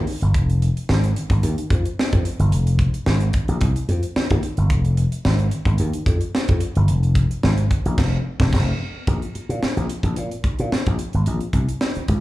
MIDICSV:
0, 0, Header, 1, 4, 480
1, 0, Start_track
1, 0, Key_signature, -4, "minor"
1, 0, Tempo, 545951
1, 301, Time_signature, 4, 2, 24, 8
1, 10730, End_track
2, 0, Start_track
2, 0, Title_t, "Slap bass"
2, 0, Program_c, 0, 36
2, 192, Note_on_c, 0, 31, 81
2, 304, Note_off_c, 0, 31, 0
2, 304, Note_on_c, 0, 29, 120
2, 604, Note_off_c, 0, 29, 0
2, 784, Note_on_c, 0, 32, 95
2, 979, Note_off_c, 0, 32, 0
2, 1144, Note_on_c, 0, 32, 87
2, 1237, Note_off_c, 0, 32, 0
2, 1258, Note_on_c, 0, 39, 100
2, 1362, Note_off_c, 0, 39, 0
2, 1502, Note_on_c, 0, 41, 93
2, 1604, Note_off_c, 0, 41, 0
2, 1873, Note_on_c, 0, 41, 98
2, 1962, Note_off_c, 0, 41, 0
2, 2104, Note_on_c, 0, 31, 92
2, 2213, Note_off_c, 0, 31, 0
2, 2213, Note_on_c, 0, 29, 118
2, 2516, Note_off_c, 0, 29, 0
2, 2694, Note_on_c, 0, 32, 99
2, 2892, Note_off_c, 0, 32, 0
2, 3063, Note_on_c, 0, 34, 97
2, 3156, Note_off_c, 0, 34, 0
2, 3181, Note_on_c, 0, 36, 95
2, 3283, Note_off_c, 0, 36, 0
2, 3417, Note_on_c, 0, 41, 89
2, 3521, Note_off_c, 0, 41, 0
2, 3789, Note_on_c, 0, 39, 95
2, 3879, Note_off_c, 0, 39, 0
2, 4022, Note_on_c, 0, 31, 84
2, 4136, Note_off_c, 0, 31, 0
2, 4136, Note_on_c, 0, 29, 110
2, 4438, Note_off_c, 0, 29, 0
2, 4615, Note_on_c, 0, 32, 99
2, 4813, Note_off_c, 0, 32, 0
2, 4974, Note_on_c, 0, 32, 100
2, 5070, Note_off_c, 0, 32, 0
2, 5095, Note_on_c, 0, 39, 104
2, 5200, Note_off_c, 0, 39, 0
2, 5333, Note_on_c, 0, 41, 85
2, 5438, Note_off_c, 0, 41, 0
2, 5707, Note_on_c, 0, 41, 89
2, 5798, Note_off_c, 0, 41, 0
2, 5945, Note_on_c, 0, 31, 96
2, 6059, Note_off_c, 0, 31, 0
2, 6059, Note_on_c, 0, 29, 117
2, 6360, Note_off_c, 0, 29, 0
2, 6539, Note_on_c, 0, 32, 106
2, 6735, Note_off_c, 0, 32, 0
2, 6906, Note_on_c, 0, 34, 98
2, 6998, Note_off_c, 0, 34, 0
2, 7017, Note_on_c, 0, 29, 101
2, 7183, Note_off_c, 0, 29, 0
2, 7384, Note_on_c, 0, 29, 100
2, 7480, Note_off_c, 0, 29, 0
2, 7499, Note_on_c, 0, 29, 106
2, 7664, Note_off_c, 0, 29, 0
2, 7979, Note_on_c, 0, 34, 104
2, 8084, Note_off_c, 0, 34, 0
2, 8346, Note_on_c, 0, 46, 97
2, 8439, Note_off_c, 0, 46, 0
2, 8587, Note_on_c, 0, 34, 95
2, 8680, Note_off_c, 0, 34, 0
2, 8823, Note_on_c, 0, 34, 89
2, 8918, Note_off_c, 0, 34, 0
2, 8942, Note_on_c, 0, 46, 99
2, 9047, Note_off_c, 0, 46, 0
2, 9315, Note_on_c, 0, 46, 94
2, 9406, Note_off_c, 0, 46, 0
2, 9557, Note_on_c, 0, 34, 79
2, 9647, Note_off_c, 0, 34, 0
2, 9795, Note_on_c, 0, 32, 85
2, 9886, Note_off_c, 0, 32, 0
2, 9909, Note_on_c, 0, 34, 116
2, 10012, Note_off_c, 0, 34, 0
2, 10139, Note_on_c, 0, 36, 78
2, 10246, Note_off_c, 0, 36, 0
2, 10629, Note_on_c, 0, 37, 93
2, 10730, Note_off_c, 0, 37, 0
2, 10730, End_track
3, 0, Start_track
3, 0, Title_t, "Muted slap bass strokes"
3, 3661, Note_on_c, 9, 29, 48
3, 3749, Note_off_c, 9, 29, 0
3, 8223, Note_on_c, 9, 29, 45
3, 8311, Note_off_c, 9, 29, 0
3, 8464, Note_on_c, 9, 29, 47
3, 8552, Note_off_c, 9, 29, 0
3, 9181, Note_on_c, 9, 29, 47
3, 9269, Note_off_c, 9, 29, 0
3, 9427, Note_on_c, 9, 29, 50
3, 9515, Note_off_c, 9, 29, 0
3, 10519, Note_on_c, 9, 29, 49
3, 10607, Note_off_c, 9, 29, 0
3, 10730, End_track
4, 0, Start_track
4, 0, Title_t, "Drums"
4, 62, Note_on_c, 9, 46, 85
4, 150, Note_off_c, 9, 46, 0
4, 188, Note_on_c, 9, 42, 48
4, 276, Note_off_c, 9, 42, 0
4, 303, Note_on_c, 9, 36, 111
4, 304, Note_on_c, 9, 42, 80
4, 391, Note_off_c, 9, 36, 0
4, 392, Note_off_c, 9, 42, 0
4, 436, Note_on_c, 9, 42, 47
4, 524, Note_off_c, 9, 42, 0
4, 547, Note_on_c, 9, 42, 74
4, 635, Note_off_c, 9, 42, 0
4, 676, Note_on_c, 9, 42, 58
4, 764, Note_off_c, 9, 42, 0
4, 783, Note_on_c, 9, 38, 112
4, 871, Note_off_c, 9, 38, 0
4, 912, Note_on_c, 9, 42, 54
4, 999, Note_off_c, 9, 42, 0
4, 1023, Note_on_c, 9, 42, 77
4, 1111, Note_off_c, 9, 42, 0
4, 1142, Note_on_c, 9, 36, 86
4, 1152, Note_on_c, 9, 42, 48
4, 1229, Note_off_c, 9, 36, 0
4, 1240, Note_off_c, 9, 42, 0
4, 1259, Note_on_c, 9, 42, 104
4, 1347, Note_off_c, 9, 42, 0
4, 1389, Note_on_c, 9, 42, 61
4, 1477, Note_off_c, 9, 42, 0
4, 1498, Note_on_c, 9, 36, 101
4, 1505, Note_on_c, 9, 42, 79
4, 1586, Note_off_c, 9, 36, 0
4, 1593, Note_off_c, 9, 42, 0
4, 1630, Note_on_c, 9, 42, 54
4, 1718, Note_off_c, 9, 42, 0
4, 1753, Note_on_c, 9, 38, 106
4, 1841, Note_off_c, 9, 38, 0
4, 1868, Note_on_c, 9, 42, 45
4, 1871, Note_on_c, 9, 36, 86
4, 1956, Note_off_c, 9, 42, 0
4, 1959, Note_off_c, 9, 36, 0
4, 1980, Note_on_c, 9, 42, 82
4, 2067, Note_off_c, 9, 42, 0
4, 2107, Note_on_c, 9, 42, 50
4, 2195, Note_off_c, 9, 42, 0
4, 2218, Note_on_c, 9, 42, 91
4, 2306, Note_off_c, 9, 42, 0
4, 2346, Note_on_c, 9, 42, 55
4, 2434, Note_off_c, 9, 42, 0
4, 2452, Note_on_c, 9, 36, 93
4, 2458, Note_on_c, 9, 42, 73
4, 2540, Note_off_c, 9, 36, 0
4, 2546, Note_off_c, 9, 42, 0
4, 2584, Note_on_c, 9, 42, 61
4, 2672, Note_off_c, 9, 42, 0
4, 2694, Note_on_c, 9, 38, 110
4, 2782, Note_off_c, 9, 38, 0
4, 2817, Note_on_c, 9, 42, 49
4, 2905, Note_off_c, 9, 42, 0
4, 2930, Note_on_c, 9, 42, 76
4, 2936, Note_on_c, 9, 36, 97
4, 3018, Note_off_c, 9, 42, 0
4, 3024, Note_off_c, 9, 36, 0
4, 3063, Note_on_c, 9, 42, 52
4, 3151, Note_off_c, 9, 42, 0
4, 3172, Note_on_c, 9, 42, 105
4, 3178, Note_on_c, 9, 36, 106
4, 3259, Note_off_c, 9, 42, 0
4, 3266, Note_off_c, 9, 36, 0
4, 3306, Note_on_c, 9, 42, 54
4, 3394, Note_off_c, 9, 42, 0
4, 3419, Note_on_c, 9, 42, 74
4, 3507, Note_off_c, 9, 42, 0
4, 3541, Note_on_c, 9, 42, 56
4, 3629, Note_off_c, 9, 42, 0
4, 3659, Note_on_c, 9, 38, 108
4, 3747, Note_off_c, 9, 38, 0
4, 3779, Note_on_c, 9, 42, 54
4, 3786, Note_on_c, 9, 36, 94
4, 3867, Note_off_c, 9, 42, 0
4, 3874, Note_off_c, 9, 36, 0
4, 3894, Note_on_c, 9, 42, 86
4, 3982, Note_off_c, 9, 42, 0
4, 4018, Note_on_c, 9, 42, 48
4, 4106, Note_off_c, 9, 42, 0
4, 4132, Note_on_c, 9, 42, 86
4, 4133, Note_on_c, 9, 36, 113
4, 4220, Note_off_c, 9, 42, 0
4, 4221, Note_off_c, 9, 36, 0
4, 4261, Note_on_c, 9, 42, 48
4, 4349, Note_off_c, 9, 42, 0
4, 4372, Note_on_c, 9, 42, 76
4, 4460, Note_off_c, 9, 42, 0
4, 4502, Note_on_c, 9, 42, 58
4, 4590, Note_off_c, 9, 42, 0
4, 4615, Note_on_c, 9, 38, 113
4, 4703, Note_off_c, 9, 38, 0
4, 4736, Note_on_c, 9, 42, 51
4, 4824, Note_off_c, 9, 42, 0
4, 4848, Note_on_c, 9, 42, 79
4, 4936, Note_off_c, 9, 42, 0
4, 4971, Note_on_c, 9, 36, 81
4, 4976, Note_on_c, 9, 42, 49
4, 5059, Note_off_c, 9, 36, 0
4, 5064, Note_off_c, 9, 42, 0
4, 5082, Note_on_c, 9, 42, 100
4, 5170, Note_off_c, 9, 42, 0
4, 5217, Note_on_c, 9, 42, 60
4, 5305, Note_off_c, 9, 42, 0
4, 5330, Note_on_c, 9, 36, 103
4, 5333, Note_on_c, 9, 42, 80
4, 5418, Note_off_c, 9, 36, 0
4, 5420, Note_off_c, 9, 42, 0
4, 5456, Note_on_c, 9, 42, 54
4, 5544, Note_off_c, 9, 42, 0
4, 5579, Note_on_c, 9, 38, 99
4, 5667, Note_off_c, 9, 38, 0
4, 5697, Note_on_c, 9, 42, 48
4, 5704, Note_on_c, 9, 36, 101
4, 5785, Note_off_c, 9, 42, 0
4, 5792, Note_off_c, 9, 36, 0
4, 5807, Note_on_c, 9, 42, 86
4, 5895, Note_off_c, 9, 42, 0
4, 5938, Note_on_c, 9, 42, 50
4, 6026, Note_off_c, 9, 42, 0
4, 6049, Note_on_c, 9, 42, 98
4, 6137, Note_off_c, 9, 42, 0
4, 6182, Note_on_c, 9, 42, 48
4, 6270, Note_off_c, 9, 42, 0
4, 6289, Note_on_c, 9, 36, 90
4, 6292, Note_on_c, 9, 42, 68
4, 6377, Note_off_c, 9, 36, 0
4, 6380, Note_off_c, 9, 42, 0
4, 6426, Note_on_c, 9, 42, 58
4, 6514, Note_off_c, 9, 42, 0
4, 6536, Note_on_c, 9, 38, 107
4, 6624, Note_off_c, 9, 38, 0
4, 6659, Note_on_c, 9, 42, 50
4, 6747, Note_off_c, 9, 42, 0
4, 6775, Note_on_c, 9, 42, 80
4, 6777, Note_on_c, 9, 36, 93
4, 6863, Note_off_c, 9, 42, 0
4, 6865, Note_off_c, 9, 36, 0
4, 6907, Note_on_c, 9, 42, 49
4, 6995, Note_off_c, 9, 42, 0
4, 7015, Note_on_c, 9, 36, 108
4, 7016, Note_on_c, 9, 49, 89
4, 7022, Note_on_c, 9, 38, 118
4, 7103, Note_off_c, 9, 36, 0
4, 7104, Note_off_c, 9, 49, 0
4, 7110, Note_off_c, 9, 38, 0
4, 7383, Note_on_c, 9, 36, 124
4, 7392, Note_on_c, 9, 38, 122
4, 7471, Note_off_c, 9, 36, 0
4, 7480, Note_off_c, 9, 38, 0
4, 7497, Note_on_c, 9, 36, 108
4, 7500, Note_on_c, 9, 49, 93
4, 7506, Note_on_c, 9, 38, 109
4, 7585, Note_off_c, 9, 36, 0
4, 7588, Note_off_c, 9, 49, 0
4, 7594, Note_off_c, 9, 38, 0
4, 7977, Note_on_c, 9, 36, 118
4, 7977, Note_on_c, 9, 42, 81
4, 8065, Note_off_c, 9, 36, 0
4, 8065, Note_off_c, 9, 42, 0
4, 8109, Note_on_c, 9, 42, 47
4, 8196, Note_off_c, 9, 42, 0
4, 8222, Note_on_c, 9, 42, 74
4, 8309, Note_off_c, 9, 42, 0
4, 8353, Note_on_c, 9, 42, 55
4, 8440, Note_off_c, 9, 42, 0
4, 8463, Note_on_c, 9, 38, 109
4, 8551, Note_off_c, 9, 38, 0
4, 8590, Note_on_c, 9, 42, 47
4, 8678, Note_off_c, 9, 42, 0
4, 8700, Note_on_c, 9, 42, 81
4, 8787, Note_off_c, 9, 42, 0
4, 8820, Note_on_c, 9, 36, 74
4, 8827, Note_on_c, 9, 42, 48
4, 8908, Note_off_c, 9, 36, 0
4, 8915, Note_off_c, 9, 42, 0
4, 8936, Note_on_c, 9, 42, 101
4, 9024, Note_off_c, 9, 42, 0
4, 9068, Note_on_c, 9, 42, 57
4, 9156, Note_off_c, 9, 42, 0
4, 9178, Note_on_c, 9, 36, 97
4, 9181, Note_on_c, 9, 42, 72
4, 9266, Note_off_c, 9, 36, 0
4, 9269, Note_off_c, 9, 42, 0
4, 9308, Note_on_c, 9, 42, 54
4, 9396, Note_off_c, 9, 42, 0
4, 9428, Note_on_c, 9, 38, 107
4, 9516, Note_off_c, 9, 38, 0
4, 9550, Note_on_c, 9, 42, 50
4, 9554, Note_on_c, 9, 36, 84
4, 9638, Note_off_c, 9, 42, 0
4, 9642, Note_off_c, 9, 36, 0
4, 9660, Note_on_c, 9, 42, 81
4, 9748, Note_off_c, 9, 42, 0
4, 9786, Note_on_c, 9, 42, 45
4, 9874, Note_off_c, 9, 42, 0
4, 9901, Note_on_c, 9, 42, 85
4, 9989, Note_off_c, 9, 42, 0
4, 10028, Note_on_c, 9, 42, 48
4, 10116, Note_off_c, 9, 42, 0
4, 10139, Note_on_c, 9, 36, 90
4, 10144, Note_on_c, 9, 42, 70
4, 10227, Note_off_c, 9, 36, 0
4, 10232, Note_off_c, 9, 42, 0
4, 10274, Note_on_c, 9, 42, 62
4, 10362, Note_off_c, 9, 42, 0
4, 10383, Note_on_c, 9, 38, 105
4, 10471, Note_off_c, 9, 38, 0
4, 10506, Note_on_c, 9, 42, 50
4, 10594, Note_off_c, 9, 42, 0
4, 10622, Note_on_c, 9, 42, 80
4, 10625, Note_on_c, 9, 36, 90
4, 10710, Note_off_c, 9, 42, 0
4, 10713, Note_off_c, 9, 36, 0
4, 10730, End_track
0, 0, End_of_file